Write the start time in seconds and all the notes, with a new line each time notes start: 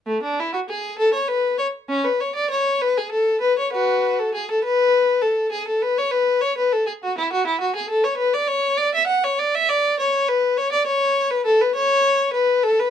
0.06 A3
0.22 D4
0.39 E4
0.53 F#4
0.69 G#4
0.98 A4
1.13 C#5
1.28 B4
1.58 C#5
1.89 C#4
2.04 B4
2.20 C#5
2.35 D5
2.50 C#5
2.81 B4
2.97 G#4
3.11 A4
3.40 B4
3.58 C#5
3.72 F#4 B4
4.19 A4
4.34 G#4
4.51 A4
4.64 B4
5.21 A4
5.52 G#4
5.67 A4
5.82 B4
5.98 C#5
6.11 B4
6.41 C#5
6.57 B4
6.72 A4
6.87 G#4
7.04 F#4
7.17 E4
7.32 F#4
7.47 E4
7.61 F#4
7.75 G#4
7.90 A4
8.04 C#5
8.17 B4
8.33 D5
8.47 C#5
8.77 D5
8.94 E5
9.07 F#5
9.24 C#5
9.39 D5
9.55 E5
9.69 D5
9.99 C#5
10.28 B4
10.57 C#5
10.72 D5
10.86 C#5
11.31 B4
11.45 A4
11.61 B4
11.75 C#5
12.33 B4
12.63 A4
12.79 B4